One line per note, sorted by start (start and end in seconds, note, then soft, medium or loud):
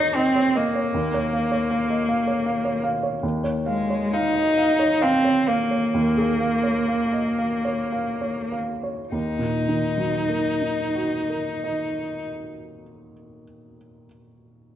0.00 0.90 D#2 soft
0.00 0.17 D#4 medium
0.00 0.36 C#5 soft
0.00 0.17 D#5 soft
0.16 0.58 C4 medium
0.16 0.48 D#5 soft
0.36 0.67 C#5 soft
0.56 2.84 A#3 soft
0.56 0.87 D#5 soft
0.75 0.94 C#5 soft
0.94 3.19 D#2 soft
1.14 1.44 C#5 soft
1.33 1.63 F5 soft
1.52 1.82 C#5 soft
1.71 2.01 F5 soft
1.90 2.09 D#5 soft
2.09 2.39 F5 soft
2.27 2.58 C#5 soft
2.46 2.77 F5 soft
2.65 2.95 C#5 soft
2.83 3.15 F5 soft
3.03 3.23 C#5 soft
3.23 5.90 D#2 soft
3.44 3.81 C#5 soft
3.66 4.15 G#3 soft
3.66 4.04 F5 soft
3.90 4.26 C#5 soft
4.13 5.04 D#4 medium
4.13 4.49 F5 soft
4.35 4.57 D#5 soft
4.58 4.93 F5 soft
4.79 5.15 C#5 soft
5.01 5.50 C4 soft
5.01 5.38 F5 soft
5.24 5.61 C#5 soft
5.48 8.54 A#3 soft
5.48 5.85 F5 soft
5.71 6.08 C#5 soft
5.94 9.09 D#2 soft
6.18 6.55 G#4 soft
6.40 6.78 F5 soft
6.63 7.03 C#5 soft
6.88 7.29 F5 soft
7.13 7.39 D#5 soft
7.39 7.82 F5 soft
7.65 8.10 C#5 soft
7.92 8.40 F5 soft
8.21 8.71 C#5 soft
8.52 9.01 F5 soft
8.83 9.12 C#5 soft
9.12 12.25 D#2 soft
9.12 12.26 D#4 soft
9.39 12.52 A#2 soft
9.68 12.81 D#3 soft
9.98 13.11 F#3 soft
10.29 13.42 A#3 soft
10.62 13.75 D#4 soft
10.95 14.06 F#4 soft
11.29 14.06 A#4 soft
11.64 14.06 D#5 soft